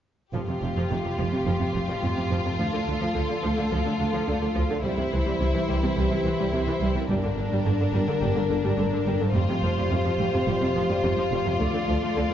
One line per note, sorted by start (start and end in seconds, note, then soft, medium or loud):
0.33 0.40 F1 soft
0.33 0.40 F2 soft
0.33 4.80 F3 soft
0.33 0.40 F3 soft
0.33 4.80 F4 soft
0.33 2.55 G4 soft
0.33 2.56 G4 soft
0.48 0.53 F2 soft
0.48 0.54 C3 soft
0.61 0.69 F1 soft
0.61 0.67 F2 soft
0.61 0.68 C3 soft
0.75 0.81 F2 soft
0.75 0.82 F3 soft
0.89 0.97 F1 soft
0.89 0.95 F2 soft
0.89 0.96 C3 soft
1.03 1.09 F2 soft
1.03 1.10 C3 soft
1.18 1.25 F1 soft
1.18 1.23 F2 soft
1.18 1.24 F3 soft
1.32 1.38 F2 soft
1.32 1.38 C3 soft
1.46 1.52 F1 soft
1.46 1.52 F2 soft
1.46 1.52 F3 soft
1.60 1.66 F2 soft
1.60 1.66 C3 soft
1.73 1.81 F1 soft
1.73 1.80 F2 soft
1.73 1.79 C3 soft
1.88 1.94 F2 soft
1.88 1.94 F3 soft
2.03 2.08 F1 soft
2.03 2.09 F2 soft
2.03 2.08 C3 soft
2.17 2.23 F2 soft
2.17 2.23 C3 soft
2.30 2.36 F1 soft
2.30 2.36 F2 soft
2.30 2.37 F3 soft
2.45 2.51 F2 soft
2.45 2.51 C3 soft
2.58 2.64 D2 soft
2.58 2.65 F3 soft
2.58 4.79 A4 soft
2.58 4.84 A4 soft
2.73 2.78 D2 soft
2.73 2.79 D3 soft
2.87 2.93 D2 soft
2.87 2.92 D3 soft
3.00 3.07 D2 soft
3.00 3.06 F3 soft
3.14 3.21 D2 soft
3.14 3.22 D2 soft
3.14 3.20 D3 soft
3.29 3.35 D2 soft
3.29 3.35 D3 soft
3.42 3.49 D2 soft
3.42 3.48 F3 soft
3.57 3.63 D2 soft
3.57 3.63 D3 soft
3.71 3.77 D2 soft
3.71 3.78 D2 soft
3.71 3.77 F3 soft
3.85 3.92 D2 soft
3.85 3.91 D3 soft
3.99 4.06 D2 soft
3.99 4.05 D3 soft
4.13 4.20 D2 soft
4.13 4.19 F3 soft
4.28 4.34 D2 soft
4.28 4.33 D3 soft
4.41 4.48 D2 soft
4.41 4.47 D3 soft
4.55 4.62 D2 soft
4.55 4.61 F3 soft
4.70 4.76 D2 soft
4.70 4.75 D3 soft
4.83 4.89 C2 medium
4.83 4.90 C2 soft
4.83 6.92 E3 soft
4.83 4.89 G3 soft
4.83 7.06 E4 soft
4.83 6.92 G4 soft
4.83 7.06 C5 soft
4.97 5.04 C2 soft
4.97 5.03 C3 soft
5.12 5.18 C2 soft
5.12 5.18 E3 soft
5.25 5.32 C2 medium
5.25 5.31 G3 soft
5.40 5.46 C2 soft
5.40 5.46 C3 soft
5.54 5.60 C2 soft
5.54 5.60 E3 soft
5.68 5.74 C2 soft
5.68 5.74 G3 medium
5.83 5.89 C2 soft
5.83 5.88 C3 soft
5.97 6.02 C2 soft
5.97 6.03 C2 medium
5.97 6.03 G3 soft
6.10 6.17 C2 soft
6.10 6.16 C3 soft
6.24 6.30 C2 soft
6.24 6.31 C2 soft
6.24 6.30 E3 soft
6.39 6.44 C2 medium
6.39 6.45 G3 soft
6.53 6.58 C2 soft
6.53 6.59 C2 soft
6.53 6.58 C3 soft
6.67 6.72 C2 soft
6.67 6.72 E3 soft
6.81 6.86 C2 medium
6.81 6.86 C2 soft
6.81 6.87 G3 soft
6.95 7.01 C2 soft
6.95 7.01 C3 soft
7.09 7.15 G1 medium
7.09 7.14 G2 medium
7.09 9.30 D3 medium
7.09 7.15 G3 soft
7.09 9.30 D4 soft
7.09 9.34 A#4 soft
7.09 9.31 A#4 soft
7.23 7.29 G2 soft
7.23 7.29 D3 soft
7.36 7.42 G1 soft
7.36 7.43 G2 soft
7.36 7.44 D3 soft
7.51 7.56 G2 medium
7.51 7.57 G3 soft
7.65 7.71 G1 soft
7.65 7.71 G2 soft
7.65 7.71 D3 soft
7.80 7.86 G2 soft
7.80 7.85 D3 soft
7.93 7.99 G1 medium
7.93 8.00 G2 soft
7.93 7.99 G3 medium
8.07 8.14 G2 soft
8.07 8.13 D3 soft
8.21 8.27 G1 medium
8.21 8.28 G2 medium
8.21 8.27 G3 medium
8.36 8.42 G2 soft
8.36 8.41 D3 soft
8.49 8.56 G1 soft
8.49 8.56 G2 soft
8.49 8.55 D3 soft
8.63 8.71 G2 medium
8.63 8.69 G3 medium
8.78 8.84 G1 soft
8.78 8.85 G2 soft
8.78 8.84 D3 soft
8.93 8.98 G2 soft
8.93 8.98 D3 soft
9.06 9.11 G1 medium
9.06 9.12 G2 medium
9.06 9.12 G3 soft
9.20 9.27 G2 soft
9.20 9.26 D3 soft
9.34 9.40 F1 medium
9.34 9.40 F2 medium
9.34 12.34 F3 medium
9.34 9.40 G3 soft
9.34 12.34 F4 soft
9.34 11.56 G4 medium
9.34 11.56 C5 soft
9.49 9.55 F2 soft
9.49 9.54 C3 soft
9.62 9.68 F1 soft
9.62 9.69 F2 soft
9.62 9.69 F3 soft
9.77 9.83 F2 medium
9.77 9.83 G3 soft
9.91 9.97 F1 soft
9.91 9.97 F2 soft
9.91 9.96 C3 soft
10.05 10.11 F2 soft
10.05 10.11 F3 soft
10.19 10.25 F1 soft
10.19 10.25 F2 medium
10.19 10.25 G3 medium
10.33 10.39 F2 soft
10.33 10.39 C3 soft
10.47 10.53 F1 medium
10.47 10.53 F2 medium
10.47 10.53 G3 soft
10.61 10.67 F2 soft
10.61 10.67 C3 soft
10.76 10.81 F1 soft
10.76 10.81 F2 soft
10.76 10.81 F3 soft
10.89 10.95 F2 medium
10.89 10.95 G3 medium
11.03 11.09 F1 soft
11.03 11.08 F2 soft
11.03 11.09 C3 soft
11.17 11.22 F2 soft
11.17 11.23 F3 soft
11.31 11.37 F1 soft
11.31 11.37 F2 medium
11.31 11.37 G3 soft
11.45 11.51 F2 soft
11.45 11.51 C3 soft
11.59 11.65 D2 medium
11.59 11.65 A3 soft
11.59 12.34 A4 soft
11.59 12.34 D5 soft
11.73 11.79 D2 soft
11.73 11.80 D3 soft
11.88 11.93 D2 soft
11.88 11.94 D2 soft
11.88 11.94 F3 soft
12.02 12.07 D2 medium
12.02 12.08 A3 medium
12.16 12.22 D2 soft
12.16 12.23 D2 soft
12.16 12.22 D3 soft
12.30 12.34 D2 soft
12.30 12.34 F3 soft